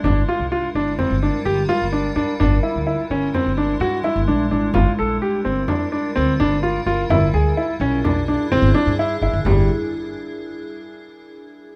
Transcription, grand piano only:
0, 0, Header, 1, 2, 480
1, 0, Start_track
1, 0, Tempo, 470958
1, 39, Time_signature, 5, 2, 24, 8
1, 11984, End_track
2, 0, Start_track
2, 0, Title_t, "Grand piano"
2, 0, Program_c, 0, 0
2, 42, Note_on_c, 0, 62, 76
2, 201, Note_off_c, 0, 62, 0
2, 290, Note_on_c, 0, 65, 72
2, 446, Note_off_c, 0, 65, 0
2, 527, Note_on_c, 0, 65, 67
2, 684, Note_off_c, 0, 65, 0
2, 769, Note_on_c, 0, 62, 73
2, 926, Note_off_c, 0, 62, 0
2, 1005, Note_on_c, 0, 60, 68
2, 1163, Note_off_c, 0, 60, 0
2, 1249, Note_on_c, 0, 62, 66
2, 1406, Note_off_c, 0, 62, 0
2, 1482, Note_on_c, 0, 67, 79
2, 1641, Note_off_c, 0, 67, 0
2, 1720, Note_on_c, 0, 65, 82
2, 1880, Note_off_c, 0, 65, 0
2, 1962, Note_on_c, 0, 62, 65
2, 2121, Note_off_c, 0, 62, 0
2, 2200, Note_on_c, 0, 62, 75
2, 2360, Note_off_c, 0, 62, 0
2, 2444, Note_on_c, 0, 62, 81
2, 2603, Note_off_c, 0, 62, 0
2, 2681, Note_on_c, 0, 64, 61
2, 2841, Note_off_c, 0, 64, 0
2, 2922, Note_on_c, 0, 64, 62
2, 3081, Note_off_c, 0, 64, 0
2, 3168, Note_on_c, 0, 61, 69
2, 3325, Note_off_c, 0, 61, 0
2, 3410, Note_on_c, 0, 60, 70
2, 3567, Note_off_c, 0, 60, 0
2, 3645, Note_on_c, 0, 62, 67
2, 3803, Note_off_c, 0, 62, 0
2, 3883, Note_on_c, 0, 66, 81
2, 4042, Note_off_c, 0, 66, 0
2, 4120, Note_on_c, 0, 64, 79
2, 4280, Note_off_c, 0, 64, 0
2, 4360, Note_on_c, 0, 62, 65
2, 4520, Note_off_c, 0, 62, 0
2, 4599, Note_on_c, 0, 62, 61
2, 4760, Note_off_c, 0, 62, 0
2, 4836, Note_on_c, 0, 65, 75
2, 4998, Note_off_c, 0, 65, 0
2, 5082, Note_on_c, 0, 69, 68
2, 5242, Note_off_c, 0, 69, 0
2, 5319, Note_on_c, 0, 67, 72
2, 5480, Note_off_c, 0, 67, 0
2, 5552, Note_on_c, 0, 60, 66
2, 5716, Note_off_c, 0, 60, 0
2, 5792, Note_on_c, 0, 62, 68
2, 5956, Note_off_c, 0, 62, 0
2, 6034, Note_on_c, 0, 62, 68
2, 6197, Note_off_c, 0, 62, 0
2, 6274, Note_on_c, 0, 60, 78
2, 6437, Note_off_c, 0, 60, 0
2, 6521, Note_on_c, 0, 62, 82
2, 6682, Note_off_c, 0, 62, 0
2, 6756, Note_on_c, 0, 65, 70
2, 6919, Note_off_c, 0, 65, 0
2, 6997, Note_on_c, 0, 65, 76
2, 7159, Note_off_c, 0, 65, 0
2, 7240, Note_on_c, 0, 64, 84
2, 7402, Note_off_c, 0, 64, 0
2, 7480, Note_on_c, 0, 68, 73
2, 7641, Note_off_c, 0, 68, 0
2, 7719, Note_on_c, 0, 64, 69
2, 7881, Note_off_c, 0, 64, 0
2, 7959, Note_on_c, 0, 61, 72
2, 8121, Note_off_c, 0, 61, 0
2, 8198, Note_on_c, 0, 62, 67
2, 8360, Note_off_c, 0, 62, 0
2, 8441, Note_on_c, 0, 62, 63
2, 8602, Note_off_c, 0, 62, 0
2, 8680, Note_on_c, 0, 60, 92
2, 8841, Note_off_c, 0, 60, 0
2, 8914, Note_on_c, 0, 62, 83
2, 9077, Note_off_c, 0, 62, 0
2, 9165, Note_on_c, 0, 64, 78
2, 9324, Note_off_c, 0, 64, 0
2, 9403, Note_on_c, 0, 64, 68
2, 9562, Note_off_c, 0, 64, 0
2, 9642, Note_on_c, 0, 55, 74
2, 9865, Note_off_c, 0, 55, 0
2, 11984, End_track
0, 0, End_of_file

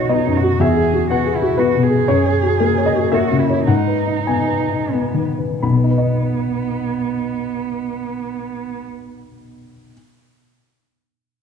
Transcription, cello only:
0, 0, Header, 1, 2, 480
1, 0, Start_track
1, 0, Key_signature, 5, "major"
1, 0, Tempo, 497512
1, 591, Time_signature, 3, 2, 24, 8
1, 2506, Tempo, 541516
1, 3466, Tempo, 591716
1, 3946, Tempo, 647249
1, 4426, Tempo, 711744
1, 8810, End_track
2, 0, Start_track
2, 0, Title_t, "Cello"
2, 0, Program_c, 0, 42
2, 0, Note_on_c, 0, 66, 42
2, 116, Note_on_c, 0, 63, 46
2, 130, Note_off_c, 0, 66, 0
2, 352, Note_on_c, 0, 66, 50
2, 367, Note_off_c, 0, 63, 0
2, 597, Note_on_c, 0, 68, 54
2, 611, Note_off_c, 0, 66, 0
2, 1064, Note_off_c, 0, 68, 0
2, 1070, Note_on_c, 0, 66, 52
2, 1307, Note_on_c, 0, 64, 53
2, 1322, Note_off_c, 0, 66, 0
2, 1534, Note_on_c, 0, 66, 47
2, 1548, Note_off_c, 0, 64, 0
2, 1767, Note_on_c, 0, 68, 56
2, 1781, Note_off_c, 0, 66, 0
2, 2980, Note_on_c, 0, 66, 46
2, 2993, Note_off_c, 0, 68, 0
2, 3212, Note_on_c, 0, 64, 46
2, 3226, Note_off_c, 0, 66, 0
2, 3464, Note_off_c, 0, 64, 0
2, 3469, Note_on_c, 0, 63, 53
2, 4425, Note_on_c, 0, 59, 36
2, 4435, Note_off_c, 0, 63, 0
2, 4661, Note_off_c, 0, 59, 0
2, 4898, Note_on_c, 0, 59, 38
2, 7081, Note_off_c, 0, 59, 0
2, 8810, End_track
0, 0, End_of_file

